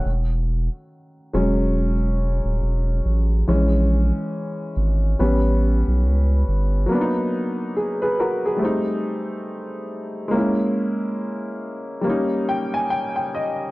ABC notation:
X:1
M:4/4
L:1/16
Q:"Swing 16ths" 1/4=70
K:G#m
V:1 name="Upright piano"
z6 [F,G,C]2 z8 | [E,G,C]6 z2 [=G,B,C]2 z6 | z4 G [GB] [FA] G2 z6 z | z8 z2 =g ^g =g g d2 |]
V:2 name="Upright piano"
z16 | z16 | [F,A,B,=D^D]8 [=G,=A,=C_E]8 | [G,A,CE]8 [=G,A,CD]8 |]
V:3 name="Sub bass" clef=bass
E,,,3 z3 E,,,4- E,,, D,,, E,,,2 =A,,,2 | A,,,3 z3 G,,,2 =A,,,3 B,,, C,,2 =G,,,2 | z16 | z16 |]